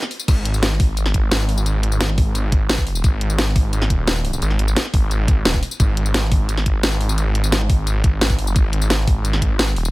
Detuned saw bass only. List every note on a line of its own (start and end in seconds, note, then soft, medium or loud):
0.28 1.13 G#1 loud
1.14 2.51 G#1 loud
2.52 3.03 G#1 loud
3.04 3.89 G#1 loud
3.90 4.41 D#1 loud
4.42 4.58 G#1 loud
4.59 4.75 G#1 loud
4.94 5.44 G#1 loud
5.45 5.61 D#1 loud
5.80 6.65 G#1 loud
6.66 8.03 G#1 medium
8.04 8.54 G#1 medium
8.56 9.41 G#1 loud
9.42 9.75 G#1 loud
9.76 9.91 D#1 loud